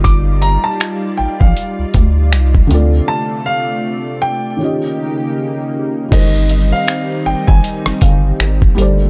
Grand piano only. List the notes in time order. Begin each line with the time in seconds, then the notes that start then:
0.04 D6
0.42 A#5
0.64 A5
1.17 G5
1.40 F5
3.08 A5
3.46 F5
4.22 G5
6.13 D#5
6.72 F5
7.26 G5
7.47 G#5